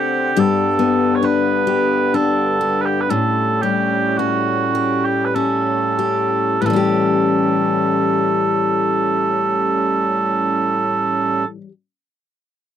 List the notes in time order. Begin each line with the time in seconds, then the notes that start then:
Already playing: D3 A3 C4 G4 F#5
0.37 G2 B3 G4 A4
0.79 B3
1.15 C#5
1.23 D4 B4
1.67 G4
2.14 D4 A4
2.61 G4
2.81 B4
2.85 G4
3.01 B4
3.08 A2 G3 C#4 A4
3.61 G3 G4
4.18 C#4 F#4
4.75 G4
5.05 G4
5.25 B4
5.35 C#4 A4
5.99 G4
6.61 A2 G3 C#4 B4
6.66 A2 E3 A4
6.70 G3 C#4
6.76 G4